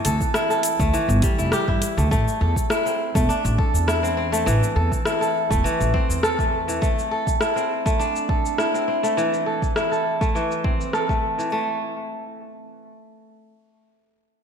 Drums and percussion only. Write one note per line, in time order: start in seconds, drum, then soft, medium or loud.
0.05 closed hi-hat loud
0.05 shaker medium
0.21 kick medium
0.21 shaker soft
0.34 cross-stick loud
0.34 shaker soft
0.51 shaker soft
0.63 closed hi-hat medium
0.63 shaker medium
0.80 kick loud
0.80 shaker soft
0.94 shaker soft
1.10 shaker soft
1.22 kick loud
1.22 closed hi-hat medium
1.22 shaker medium
1.39 shaker soft
1.52 cross-stick loud
1.52 shaker soft
1.68 kick medium
1.82 closed hi-hat loud
1.82 shaker medium
1.99 shaker soft
2.11 kick loud
2.11 shaker medium
2.28 shaker soft
2.56 kick medium
2.56 shaker medium
2.70 cross-stick loud
2.70 shaker medium
2.87 shaker soft
3.15 kick loud
3.15 shaker medium
3.30 shaker medium
3.45 shaker soft
3.59 kick loud
3.75 shaker medium
3.88 cross-stick loud
3.88 shaker medium
4.05 shaker soft
4.34 shaker medium
4.48 shaker medium
4.63 shaker soft
4.92 kick medium
4.92 shaker medium
5.05 cross-stick loud
5.05 shaker medium
5.22 shaker soft
5.51 kick loud
5.51 shaker medium
5.66 shaker medium
5.81 shaker soft
5.94 kick loud
6.10 shaker medium
6.23 cross-stick medium
6.23 shaker medium
6.39 kick medium
6.39 shaker soft
6.69 shaker medium
6.82 kick loud
6.82 shaker medium
6.99 shaker soft
7.27 kick medium
7.27 shaker medium
7.41 cross-stick loud
7.41 shaker medium
7.57 shaker soft
7.86 kick loud
7.86 shaker medium
8.01 shaker medium
8.16 shaker soft
8.29 kick loud
8.46 shaker medium
8.58 cross-stick medium
8.58 shaker medium
8.75 shaker soft
9.04 shaker medium
9.18 shaker medium
9.34 shaker soft
9.62 kick medium
9.62 shaker medium
9.76 cross-stick loud
9.76 shaker soft
9.93 shaker soft
10.21 kick loud
10.21 shaker medium
10.36 shaker soft
10.51 shaker soft
10.64 kick medium
10.81 shaker medium
10.93 cross-stick medium
10.93 shaker medium
11.09 kick medium
11.09 shaker soft
11.39 shaker medium